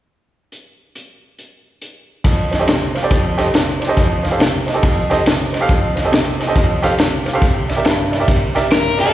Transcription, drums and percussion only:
0.52 closed hi-hat soft
0.95 closed hi-hat medium
1.39 closed hi-hat soft
1.82 closed hi-hat medium
2.24 kick medium
2.24 snare soft
2.24 ride medium
2.52 snare soft
2.52 ride soft
2.68 snare loud
2.68 ride medium
2.95 snare soft
2.95 ride soft
3.11 kick medium
3.11 snare soft
3.11 ride medium
3.38 snare soft
3.38 ride medium
3.54 snare loud
3.54 ride medium
3.82 snare soft
3.82 ride medium
3.97 kick medium
3.97 snare soft
3.97 ride medium
4.25 snare soft
4.25 ride soft
4.40 snare medium
4.40 ride medium
4.68 snare soft
4.68 ride soft
4.83 kick medium
4.83 snare soft
4.83 ride medium
5.11 snare soft
5.11 ride soft
5.26 snare loud
5.26 ride medium
5.54 snare soft
5.54 ride medium
5.69 kick loud
5.69 snare soft
5.69 ride medium
5.97 snare soft
5.97 ride soft
6.13 snare loud
6.13 ride medium
6.40 snare soft
6.40 ride medium
6.56 kick loud
6.56 snare soft
6.56 ride medium
6.83 snare soft
6.83 ride medium
6.98 snare loud
6.98 ride medium
7.26 snare soft
7.26 ride medium
7.42 kick loud
7.42 snare soft
7.42 ride medium
7.69 snare soft
7.69 ride medium
7.85 snare loud
7.85 ride medium
8.13 snare soft
8.13 ride soft
8.28 kick medium
8.28 snare soft
8.28 ride medium
8.56 snare soft
8.56 ride medium
8.70 snare loud
8.70 ride medium
8.99 snare soft
8.99 ride medium

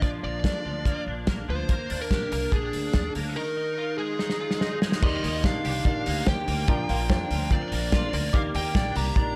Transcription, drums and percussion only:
0.02 kick loud
0.02 closed hi-hat medium
0.44 kick loud
0.44 snare loud
0.44 closed hi-hat medium
0.85 kick medium
0.85 closed hi-hat medium
1.27 kick loud
1.27 snare loud
1.27 closed hi-hat medium
1.69 kick loud
1.69 closed hi-hat medium
1.90 open hi-hat medium
2.11 kick loud
2.11 snare medium
2.11 closed hi-hat medium
2.32 open hi-hat medium
2.52 kick medium
2.52 closed hi-hat medium
2.73 open hi-hat medium
2.93 kick loud
2.93 snare loud
2.93 closed hi-hat medium
3.15 open hi-hat medium
4.19 snare soft
4.30 snare medium
4.51 snare medium
4.61 snare medium
4.82 snare loud
4.92 snare medium
5.03 kick loud
5.03 crash loud
5.24 open hi-hat medium
5.44 kick loud
5.44 snare loud
5.44 closed hi-hat medium
5.65 open hi-hat medium
5.85 kick loud
5.85 closed hi-hat medium
6.06 open hi-hat medium
6.26 kick loud
6.26 snare loud
6.26 closed hi-hat medium
6.48 open hi-hat medium
6.68 kick loud
6.68 closed hi-hat medium
6.89 open hi-hat medium
7.10 kick loud
7.10 snare loud
7.10 closed hi-hat medium
7.31 open hi-hat medium
7.51 kick loud
7.51 closed hi-hat medium
7.72 open hi-hat medium
7.92 kick loud
7.92 snare loud
7.92 closed hi-hat medium
8.13 open hi-hat medium
8.34 kick loud
8.34 closed hi-hat medium
8.55 open hi-hat medium
8.75 kick loud
8.75 snare loud
8.75 closed hi-hat medium
8.96 open hi-hat medium
9.16 kick loud
9.16 closed hi-hat medium

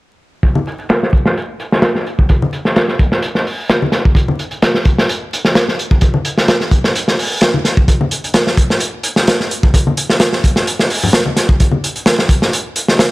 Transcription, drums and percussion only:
0.43 kick medium
0.43 closed hi-hat medium
0.55 high conga medium
0.67 closed hi-hat medium
0.79 closed hi-hat soft
0.89 snare loud
0.89 closed hi-hat medium
1.03 snare soft
1.13 kick medium
1.13 closed hi-hat medium
1.26 snare medium
1.37 closed hi-hat medium
1.60 closed hi-hat medium
1.72 snare soft
1.82 snare loud
1.82 closed hi-hat medium
1.95 snare soft
2.07 closed hi-hat medium
2.19 kick medium
2.29 kick loud
2.29 closed hi-hat medium
2.42 high conga medium
2.53 closed hi-hat medium
2.65 snare soft
2.76 snare loud
2.76 closed hi-hat medium
2.88 snare soft
2.99 kick medium
2.99 closed hi-hat medium
3.12 snare soft
3.22 closed hi-hat medium
3.35 snare soft
3.47 open hi-hat medium
3.69 snare loud
3.69 closed hi-hat medium
3.82 high conga medium
3.92 snare soft
3.92 closed hi-hat medium
4.05 kick medium
4.15 kick loud
4.15 closed hi-hat medium
4.28 high conga medium
4.39 closed hi-hat medium
4.51 closed hi-hat soft
4.62 snare loud
4.62 closed hi-hat medium
4.75 snare soft
4.85 kick medium
4.85 closed hi-hat medium
4.98 snare medium
5.09 closed hi-hat medium
5.33 closed hi-hat medium
5.45 snare soft
5.55 snare loud
5.55 closed hi-hat medium
5.68 snare soft
5.79 closed hi-hat medium
5.91 kick medium
6.01 kick loud
6.01 closed hi-hat medium
6.14 high conga medium
6.25 closed hi-hat medium
6.38 snare soft
6.48 snare loud
6.48 closed hi-hat medium
6.61 snare soft
6.71 kick medium
6.71 closed hi-hat medium
6.84 snare medium
6.95 closed hi-hat medium
7.08 snare soft
7.19 open hi-hat medium
7.41 snare loud
7.41 closed hi-hat medium
7.54 high conga medium
7.65 snare soft
7.65 closed hi-hat medium
7.77 kick medium
7.88 kick loud
7.88 closed hi-hat medium
8.01 high conga medium
8.11 closed hi-hat medium
8.24 closed hi-hat soft
8.34 snare loud
8.34 closed hi-hat medium
8.47 snare soft
8.57 kick medium
8.57 closed hi-hat medium
8.70 snare soft
8.80 closed hi-hat medium
9.03 closed hi-hat medium
9.16 snare soft
9.27 snare loud
9.27 closed hi-hat medium
9.40 snare soft
9.51 closed hi-hat medium
9.63 kick medium
9.74 kick loud
9.74 closed hi-hat medium
9.87 high conga medium
9.97 closed hi-hat medium
10.10 snare soft
10.20 snare loud
10.20 closed hi-hat medium
10.33 snare soft
10.44 kick medium
10.44 closed hi-hat medium
10.56 snare soft
10.67 closed hi-hat medium
10.79 snare soft
10.90 open hi-hat medium
11.03 low conga medium
11.13 snare loud
11.13 closed hi-hat medium
11.26 high conga medium
11.37 snare soft
11.37 closed hi-hat medium
11.49 kick medium
11.60 kick loud
11.60 closed hi-hat medium
11.72 high conga medium
11.84 closed hi-hat medium
11.96 closed hi-hat soft
12.06 snare loud
12.06 closed hi-hat medium
12.19 snare medium
12.29 kick medium
12.29 closed hi-hat medium
12.42 snare soft
12.53 closed hi-hat medium
12.76 closed hi-hat medium
12.88 snare soft
12.99 snare loud
12.99 closed hi-hat medium

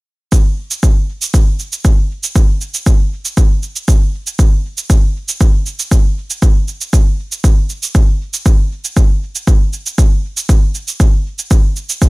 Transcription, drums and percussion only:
0.32 kick loud
0.32 cabasa soft
0.71 cabasa soft
0.83 kick loud
0.83 cabasa soft
1.22 cabasa soft
1.34 kick loud
1.34 cabasa soft
1.59 cabasa soft
1.72 cabasa soft
1.85 kick loud
1.85 cabasa medium
2.23 cabasa soft
2.36 kick loud
2.36 cabasa soft
2.61 cabasa soft
2.74 cabasa soft
2.86 kick loud
2.86 cabasa soft
3.25 cabasa soft
3.37 kick loud
3.37 cabasa soft
3.63 cabasa soft
3.76 cabasa soft
3.88 kick loud
3.88 cabasa soft
4.27 cabasa soft
4.39 kick loud
4.39 cabasa medium
4.78 cabasa soft
4.90 kick loud
4.90 cabasa soft
5.28 cabasa soft
5.41 kick loud
5.41 cabasa medium
5.66 cabasa soft
5.79 cabasa soft
5.92 kick loud
5.92 cabasa medium
6.30 cabasa soft
6.42 kick loud
6.42 cabasa soft
6.68 cabasa soft
6.81 cabasa soft
6.93 kick loud
6.93 cabasa soft
7.32 cabasa soft
7.44 kick loud
7.44 cabasa soft
7.70 cabasa soft
7.83 cabasa soft
7.95 kick loud
7.95 cabasa soft
8.34 cabasa soft
8.46 kick loud
8.46 cabasa soft
8.84 cabasa soft
8.97 kick loud
8.97 cabasa soft
9.35 cabasa soft
9.47 kick loud
9.47 cabasa soft
9.73 cabasa soft
9.86 cabasa soft
9.98 kick loud
9.98 cabasa soft
10.37 cabasa soft
10.49 kick loud
10.49 cabasa soft
10.75 cabasa soft
10.88 cabasa soft
11.00 kick loud
11.00 cabasa soft
11.39 cabasa soft
11.51 kick loud
11.51 cabasa soft
11.76 cabasa soft
11.89 cabasa soft
12.02 kick medium
12.02 cabasa soft

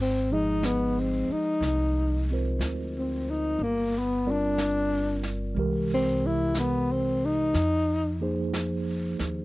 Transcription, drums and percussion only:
0.63 brush sweep soft
0.63 snare soft
0.63 hi-hat pedal medium
1.62 brush sweep soft
1.62 snare soft
2.61 brush sweep soft
2.61 snare soft
2.61 hi-hat pedal soft
3.59 brush sweep soft
4.58 brush sweep soft
4.58 snare soft
4.58 hi-hat pedal medium
5.23 snare soft
5.56 brush sweep soft
6.54 brush sweep soft
6.54 snare soft
6.54 hi-hat pedal medium
7.54 brush sweep soft
7.54 snare soft
8.53 brush sweep soft
8.53 snare soft
8.53 hi-hat pedal soft
9.19 snare soft

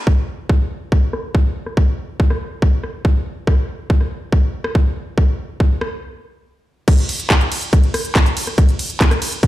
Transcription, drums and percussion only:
0.07 kick loud
0.49 kick loud
0.49 cross-stick soft
0.92 kick loud
1.13 cross-stick medium
1.35 kick loud
1.66 cross-stick soft
1.77 kick loud
2.20 kick loud
2.30 cross-stick medium
2.62 kick loud
2.84 cross-stick soft
3.05 kick loud
3.47 kick loud
3.47 cross-stick medium
3.90 kick loud
4.01 cross-stick soft
4.32 kick loud
4.64 cross-stick medium
4.75 kick loud
5.18 kick loud
5.18 cross-stick soft
5.60 kick loud
5.81 cross-stick medium
6.88 kick loud
6.88 closed hi-hat loud
6.88 crash loud
6.98 closed hi-hat medium
7.09 open hi-hat loud
7.09 ride medium
7.20 closed hi-hat medium
7.30 kick loud
7.30 cross-stick soft
7.30 clap loud
7.30 closed hi-hat loud
7.41 closed hi-hat medium
7.52 open hi-hat loud
7.52 ride medium
7.62 closed hi-hat medium
7.73 kick loud
7.73 closed hi-hat loud
7.83 closed hi-hat medium
7.94 cross-stick medium
7.94 open hi-hat loud
7.94 ride medium
8.05 closed hi-hat medium
8.15 kick loud
8.15 clap loud
8.15 closed hi-hat loud
8.26 closed hi-hat medium
8.37 open hi-hat loud
8.37 ride medium
8.47 cross-stick soft
8.47 closed hi-hat medium
8.58 kick loud
8.58 closed hi-hat loud
8.69 closed hi-hat medium
8.79 open hi-hat loud
8.79 ride medium
8.90 closed hi-hat medium
9.01 kick loud
9.01 clap loud
9.01 closed hi-hat medium
9.11 cross-stick medium
9.11 closed hi-hat medium
9.22 open hi-hat loud
9.22 ride medium
9.32 closed hi-hat medium
9.43 kick loud
9.43 closed hi-hat loud

